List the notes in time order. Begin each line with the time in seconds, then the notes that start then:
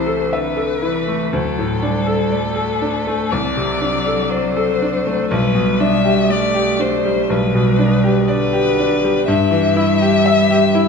Already playing: C2 C3 E3 A3 E4 A4 C5 E5
0.07 A4
0.32 D3 B4 E5
0.57 A4
0.82 E3 E4
1.08 A3
1.33 D2 F#3 A4
1.59 A2
1.83 G3 D4
2.07 A4
2.30 A3 D5
2.56 A4
2.82 D4
3.07 A3
3.30 C2 F#3 D5
3.57 C3
3.81 D4
4.06 A4
4.30 C5 D5
4.57 A4
4.82 D4
5.07 A3
5.29 B1 G3 B4
5.55 B2
5.80 D4 E5
6.05 G4
6.29 A3 D5
6.54 G4
6.79 D4 C5
7.05 G3
7.30 B1 G3 B4
7.55 B2
7.79 D4
8.04 G4
8.28 D3 B4 D5
8.53 G4
8.80 D4
9.04 G3
9.27 G2 G3 E5
9.51 E3
9.76 E4
10.02 G4
10.26 E5
10.50 G4
10.75 E4